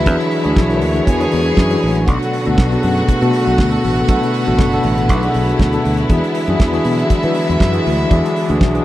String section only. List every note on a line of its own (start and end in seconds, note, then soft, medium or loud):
0.00 6.05 D3 medium
0.00 6.05 F#3 medium
0.00 2.03 G#3 medium
0.00 2.03 E4 medium
0.08 2.06 C#5 medium
2.09 6.06 A3 medium
2.09 8.85 B3 medium
2.09 4.07 F#4 medium
4.09 8.07 E4 medium
6.11 8.85 D3 medium
6.11 8.85 F#3 medium
6.11 8.85 G#3 medium
8.11 8.85 D4 medium